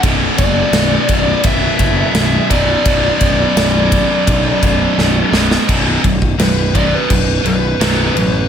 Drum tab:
CC |----------------|----------------|x-x-x-x-x-x-x-x-|
RD |x-x-x-x-x-x-x-x-|x-x-x-x-x-x-----|----------------|
SD |----o-------o---|----o-------o-oo|----o-------o---|
BD |o-o---o-o-o---o-|o-o---o-o-o-----|o-oo--o-o-------|